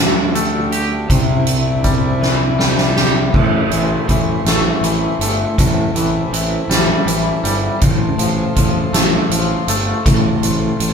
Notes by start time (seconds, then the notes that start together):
Already playing: D2 D3 A3 D4 G4
0.35 A3, closed hi-hat
0.72 G4, closed hi-hat
1.08 C2 C3 C4 E4, kick, closed hi-hat
1.47 closed hi-hat
1.84 G3, kick, closed hi-hat
2.21 E3, snare
2.59 G3, snare
2.78 snare
2.96 G4, snare
3.34 A1 A2 A3 E4 C5, kick, crash
3.71 A1 E3, closed hi-hat
4.08 A1 E3, kick, closed hi-hat
4.45 A1 A3, snare, closed hi-hat
4.81 A1 E3, closed hi-hat
5.19 G1 A3, closed hi-hat
5.58 A1 A2 C4 A4, kick, closed hi-hat
5.94 A1 E3, closed hi-hat
6.31 A1 E3, closed hi-hat
6.68 A1 G3, snare, closed hi-hat
7.06 A1 E3, closed hi-hat
7.43 G1 G3, closed hi-hat
7.81 A1 A2 A3 F4 C5, kick, closed hi-hat
8.18 A1 F3, closed hi-hat
8.56 A1 F3, kick, closed hi-hat
8.93 A1 A3, snare, closed hi-hat
9.30 A1 F3, closed hi-hat
9.67 G1 A3, closed hi-hat
10.05 A1 A2, kick, closed hi-hat
10.42 A1, closed hi-hat
10.80 A1, closed hi-hat